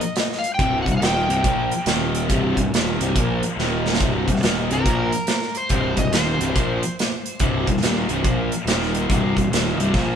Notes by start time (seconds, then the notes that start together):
Already playing: D#5
0.01 closed hi-hat
0.16 snare, closed hi-hat
0.32 snare
0.39 F5
0.44 closed hi-hat
0.54 G5
0.59 C1 C2 G2 C3, kick, closed hi-hat
0.82 F#5
0.86 C1 C2 G2, kick, closed hi-hat
0.97 G5
1.01 D#1 D#2 A#2 D#3, snare, closed hi-hat
1.28 C1 C2 G2 C3, closed hi-hat
1.44 A#1 A#2 F3 A#3, kick, closed hi-hat
1.72 closed hi-hat
1.86 D#1 D#2 A#2 D#3, snare, closed hi-hat
2.15 closed hi-hat
2.29 C1 C2 G2 C3, kick, closed hi-hat
2.56 C1 C2 G2, kick, closed hi-hat
2.72 D#1 D#2 A#2 D#3, snare, closed hi-hat
2.99 C1 C2 G2 C3, closed hi-hat
3.16 A#1 A#2 F3 A#3, kick, closed hi-hat
3.43 closed hi-hat
3.57 D#1 D#2 A#2 D#3, snare
3.86 snare
3.93 snare
4.00 C1 C2 G2 C3, kick, closed hi-hat
4.28 C1 C2 G2, kick, closed hi-hat
4.36 snare
4.42 D#1 D#2 A#2 D#3, snare, closed hi-hat
4.70 C1 C2 G2 C3 A#4, closed hi-hat
4.86 A#1 A#2 F3 A#3, kick, closed hi-hat
5.13 closed hi-hat
5.27 snare, closed hi-hat
5.42 snare
5.55 C5, closed hi-hat
5.69 C1 C2 G2 C3, kick, closed hi-hat
5.97 C1 C2 G2 D#5, kick, closed hi-hat
6.12 D#1 D#2 A#2 D#3 C5, snare, closed hi-hat
6.39 C1 C2 G2 C3, closed hi-hat
6.55 A#1 A#2 F3 A#3, kick, closed hi-hat
6.83 closed hi-hat
6.99 snare, closed hi-hat
7.26 closed hi-hat
7.39 C1 C2 G2 C3, kick, closed hi-hat
7.67 C1 C2 G2, kick, closed hi-hat
7.77 D#1, snare
7.82 D#2 A#2 D#3, snare, closed hi-hat
8.08 C1 C2 G2 C3, closed hi-hat
8.24 A#1 A#2 F3 A#3, kick, closed hi-hat
8.52 closed hi-hat
8.66 D#1 D#2 A#2 D#3, snare, closed hi-hat
8.82 snare
8.95 closed hi-hat
9.09 C1 C2 G2 C3, kick, closed hi-hat
9.36 C1 C2 G2, kick, closed hi-hat
9.50 D#1 D#2 A#2 D#3, snare, closed hi-hat
9.76 C1 C2
9.80 G2 C3, closed hi-hat
9.94 A#1 A#2 F3 A#3, kick, snare